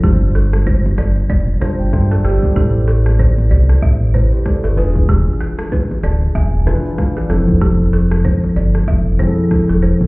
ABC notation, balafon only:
X:1
M:4/4
L:1/16
Q:"Swing 16ths" 1/4=95
K:Am
V:1 name="Balafon"
G z A z c z d z d z c z2 A G z | G z A z c z d z e z c z2 A B z | G z ^G z B z d z e z B z2 G A z | G z A z c z d z e z c z2 A c z |]